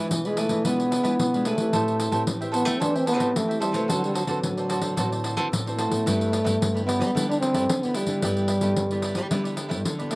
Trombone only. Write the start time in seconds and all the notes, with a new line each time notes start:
Already playing: E3
0.26 G#3
0.39 A3
0.67 B3
1.47 A3
2.54 B3
2.82 D4
2.96 C4
3.08 B3
3.37 A3
3.62 G3
3.75 A3
3.91 F#3
4.05 G3
4.16 F#3
4.29 F#3
5.77 A3
6.86 B3
7.29 D4
7.40 C4
7.83 B3
7.96 G3
10.11 A3